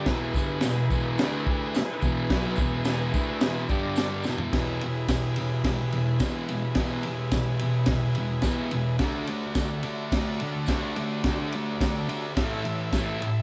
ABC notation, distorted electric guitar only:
X:1
M:4/4
L:1/8
Q:1/4=107
K:Emix
V:1 name="Distorted electric guitar" clef=bass
[E,,B,,E,] [=G,,D,=G,] [E,,B,,] [E,,B,,E,] [D,A,D] [D,A,D] z [E,,B,,E,] | [B,,F,B,] [E,,B,,E,]2 [D,A,D] [E,,B,,E,] [=G,,D,=G,]2 [E,,B,,E,] | [E,,B,,E,] [E,,B,,] [E,,B,,] [E,,B,,] [E,,B,,] [E,,B,,] [E,,B,,E,] [E,,B,,] | [E,,B,,E,] [E,,B,,] [E,,B,,] [E,,B,,] [E,,B,,] [E,,B,,] [E,,B,,E,] [E,,B,,] |
[D,A,D] [D,A,] [D,A,] [D,A,] [D,A,] [D,A,] [D,A,D] [D,A,] | [D,A,D] [D,A,] [D,A,] [D,A,] [A,,E,A,] [A,,E,] [A,,E,A,] [A,,E,] |]